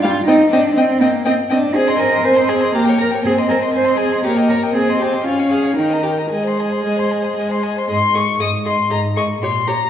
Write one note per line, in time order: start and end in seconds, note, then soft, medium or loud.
0.02 0.11 G3 medium
0.02 0.26 F4 medium
0.02 0.10 F5 medium
0.02 0.13 G5 medium
0.27 0.36 C4 medium
0.27 0.51 D#4 medium
0.27 0.36 D#5 medium
0.27 0.35 G5 medium
0.52 0.61 C4 medium
0.52 0.76 D4 medium
0.52 0.61 D#5 medium
0.52 0.60 G5 soft
0.77 1.03 C4 medium
0.77 0.85 C4 medium
0.77 0.85 D#5 soft
0.77 0.86 G5 medium
1.01 1.25 A#3 medium
1.01 1.09 C4 medium
1.01 1.10 D#5 medium
1.01 1.09 G5 medium
1.25 1.34 C4 medium
1.25 1.34 D#5 medium
1.25 1.33 G5 medium
1.50 1.59 C4 medium
1.50 1.77 D4 medium
1.50 1.59 D#5 soft
1.50 1.58 G5 medium
1.75 2.20 C4 medium
1.75 1.99 G#4 medium
1.75 1.89 C5 medium
1.75 1.90 G#5 soft
1.87 2.01 D#5 soft
1.87 2.01 C6 soft
2.00 2.26 A#4 medium
2.00 2.14 C5 soft
2.00 2.14 G#5 soft
2.12 2.24 D#5 soft
2.12 2.25 C6 soft
2.25 2.69 C4 medium
2.25 2.50 C5 medium
2.25 2.39 C5 soft
2.25 2.38 G#5 medium
2.36 2.52 D#5 soft
2.36 2.50 C6 soft
2.49 2.76 G#4 medium
2.49 2.65 C5 soft
2.49 2.63 G#5 soft
2.61 2.75 D#5 soft
2.61 2.74 C6 soft
2.74 3.19 A#3 medium
2.74 2.99 G4 medium
2.74 2.90 A#4 soft
2.74 2.86 A#5 medium
2.85 3.03 C#5 soft
2.85 3.00 G5 soft
2.99 3.08 A#4 medium
2.99 3.16 A#4 soft
2.99 3.13 A#5 soft
3.12 3.25 C#5 soft
3.12 3.24 G5 soft
3.25 3.69 C4 medium
3.25 3.33 G#4 medium
3.25 3.40 C5 soft
3.25 3.40 G#5 soft
3.38 3.52 D#5 soft
3.38 3.51 C6 soft
3.49 3.58 A#4 medium
3.49 3.64 C5 soft
3.49 3.63 G#5 soft
3.62 3.75 D#5 soft
3.62 3.73 C6 soft
3.74 4.18 C4 medium
3.74 3.99 C5 medium
3.74 3.90 C5 soft
3.74 3.87 G#5 soft
3.85 4.02 D#5 soft
3.85 3.99 C6 soft
3.97 4.24 G#4 medium
3.97 4.15 C5 soft
3.97 4.14 G#5 soft
4.12 4.25 D#5 soft
4.12 4.23 C6 soft
4.24 4.69 A#3 medium
4.24 4.32 G4 medium
4.24 4.39 C#5 soft
4.24 4.38 A#5 soft
4.36 4.52 D#5 soft
4.36 4.50 G5 soft
4.49 4.58 A#4 medium
4.49 4.65 C#5 soft
4.49 4.65 A#5 soft
4.63 4.74 D#5 soft
4.63 4.75 G5 soft
4.74 5.19 C4 soft
4.74 4.99 G#4 medium
4.74 4.89 C5 soft
4.74 4.91 G#5 soft
4.88 5.02 D#5 soft
4.88 5.04 C6 soft
5.00 5.25 G4 medium
5.00 5.15 C5 soft
5.00 5.15 G#5 soft
5.13 5.25 D#5 soft
5.13 5.26 C6 soft
5.25 5.70 C#4 soft
5.25 5.33 F4 medium
5.25 5.40 F5 soft
5.25 5.41 G#5 soft
5.39 5.53 C#5 soft
5.39 5.54 F5 soft
5.50 5.76 G#4 medium
5.50 5.65 F5 soft
5.50 5.67 G#5 soft
5.63 5.76 C#5 soft
5.63 5.78 F5 soft
5.77 6.24 D#3 soft
5.77 6.02 D#4 medium
5.77 5.91 A#4 soft
5.77 5.94 G5 soft
5.90 6.05 D#5 soft
5.90 6.07 A#5 soft
6.03 6.11 G4 soft
6.03 6.19 A#4 soft
6.03 6.20 G5 soft
6.18 6.30 D#5 soft
6.18 6.31 A#5 soft
6.30 6.77 G#3 soft
6.30 7.61 G#4 medium
6.30 6.45 D#5 soft
6.30 6.48 G#5 soft
6.44 6.59 C5 soft
6.44 6.61 C6 soft
6.57 6.71 D#5 soft
6.57 6.74 G#5 soft
6.70 6.82 C5 soft
6.70 6.84 C6 soft
6.83 7.31 G#3 soft
6.83 6.97 D#5 soft
6.83 7.00 G#5 soft
6.96 7.10 C5 soft
6.96 7.13 C6 soft
7.09 7.24 D#5 soft
7.09 7.26 G#5 soft
7.22 7.35 C5 soft
7.22 7.37 C6 soft
7.35 7.84 G#3 soft
7.35 7.50 D#5 soft
7.35 7.53 G#5 soft
7.49 7.64 C5 soft
7.49 7.65 C6 soft
7.62 7.78 D#5 soft
7.62 7.80 G#5 soft
7.76 7.88 C5 soft
7.76 7.90 C6 soft
7.88 8.34 G#2 soft
7.88 7.97 G#4 soft
7.88 7.96 D#5 soft
7.88 8.16 C6 medium
8.14 8.22 G#4 soft
8.14 8.23 D#5 soft
8.14 8.41 C#6 medium
8.40 8.86 G#2 soft
8.40 8.48 G#4 soft
8.40 8.48 D#5 soft
8.40 8.49 D#6 medium
8.65 8.73 G#4 soft
8.65 8.74 D#5 soft
8.65 8.91 C6 medium
8.90 9.36 G#2 soft
8.90 8.98 G#4 soft
8.90 8.99 D#5 soft
8.90 9.00 A#5 medium
9.16 9.24 G#4 soft
9.16 9.25 D#5 soft
9.16 9.25 C#6 medium
9.42 9.87 A#2 soft
9.42 9.50 G4 soft
9.42 9.51 C#5 soft
9.42 9.69 C6 soft
9.67 9.75 G4 soft
9.67 9.76 C#5 soft
9.67 9.90 A#5 medium